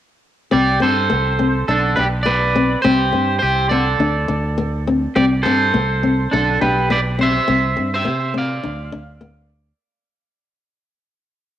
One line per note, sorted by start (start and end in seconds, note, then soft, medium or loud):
0.51 0.79 C2 medium
0.51 0.67 C4 loud
0.51 0.80 G4 medium
0.51 0.82 D5 loud
0.80 1.08 G2 medium
0.80 0.96 C4 medium
0.80 1.65 A4 medium
0.80 1.65 C5 medium
1.10 1.63 C2 medium
1.10 1.26 B3 medium
1.39 1.55 C4 medium
1.68 1.94 B1 medium
1.68 1.84 D4 medium
1.68 1.96 D4 medium
1.68 1.98 A4 medium
1.96 2.75 B1 medium
1.96 2.13 D4 medium
1.96 2.07 G4 medium
1.96 2.04 B4 medium
2.23 2.42 B3 medium
2.23 2.80 B4 medium
2.23 2.79 D5 medium
2.56 2.71 C4 medium
2.82 3.11 C2 loud
2.82 3.00 C4 loud
2.82 3.38 G4 medium
2.82 3.38 C5 medium
3.13 3.39 G2 medium
3.13 3.29 C4 medium
3.39 3.94 C2 medium
3.39 3.69 G4 medium
3.39 3.69 C5 medium
3.69 3.87 C4 medium
3.69 4.83 A4 medium
3.69 4.82 D5 medium
3.99 4.25 D2 medium
3.99 4.16 D4 medium
4.28 5.06 D2 medium
4.28 4.44 D4 medium
4.58 4.74 B3 medium
4.87 5.03 C4 medium
5.16 5.42 C2 loud
5.16 5.32 C4 loud
5.16 5.24 G4 medium
5.16 5.24 D5 medium
5.43 5.71 G2 medium
5.43 5.61 C4 medium
5.43 6.27 A4 medium
5.43 6.34 C5 medium
5.74 6.26 C2 loud
5.74 5.90 B3 medium
6.03 6.19 C4 medium
6.31 6.59 B1 medium
6.31 6.59 D4 medium
6.31 6.49 D4 medium
6.31 6.61 A4 medium
6.61 7.39 B1 medium
6.61 6.77 D4 medium
6.61 6.88 G4 medium
6.61 6.89 B4 medium
6.90 7.06 B3 medium
6.90 6.98 B4 medium
6.90 6.99 D5 medium
7.19 7.35 C4 medium
7.19 7.90 C5 medium
7.23 7.94 E5 loud
7.48 7.75 C2 loud
7.48 7.64 C4 medium
7.77 8.04 G2 medium
7.77 7.93 C4 medium
7.94 8.33 C5 medium
7.94 8.34 E5 medium
8.05 8.58 C3 medium
8.05 8.21 B3 medium
8.34 8.50 C4 medium
8.34 9.49 D5 medium
8.38 9.49 F5 medium
8.63 8.91 D2 medium
8.63 8.80 D4 medium
8.92 9.71 D2 medium
8.92 9.09 D4 medium
9.21 9.37 B3 medium